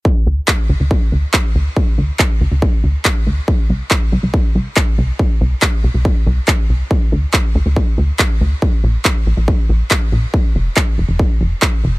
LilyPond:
<<
  \new Staff \with { instrumentName = "Analog synth bass" } { \clef bass \time 4/4 \key d \minor \tempo 4 = 140 r8 d,16 r8. d,16 d,16 r8 d,16 r8. d,16 r16 | r8 d,16 r8. d,16 d,16 r8 d,16 r8. d,16 r16 | r8 c,16 r8. c,16 c,16 r8 c,16 r8. c,16 r16 | r8 c,16 r8. c,16 c,16 r8 c,16 r8. c,16 r16 |
r8 d,16 r8. d,16 d,16 r8 d,16 r8. d,16 r16 | r8 bes,,16 r8. bes,,16 bes,,16 r8 bes,,16 r8. bes,,16 r16 | r8 f,,16 r8. f,,16 f,,16 r8 f,,16 r8. f,,16 r16 | }
  \new DrumStaff \with { instrumentName = "Drums" } \drummode { \time 4/4 bd4 <hc bd>4 bd4 <hc bd>4 | bd4 <hc bd>4 bd4 <hc bd>4 | bd4 <hc bd>4 bd4 <hc bd>4 | bd4 <hc bd>4 bd4 <hc bd>4 |
bd4 <hc bd>4 bd4 <hc bd>4 | bd4 <hc bd>4 bd4 <hc bd>4 | bd4 <hc bd>4 bd4 <hc bd>4 | }
>>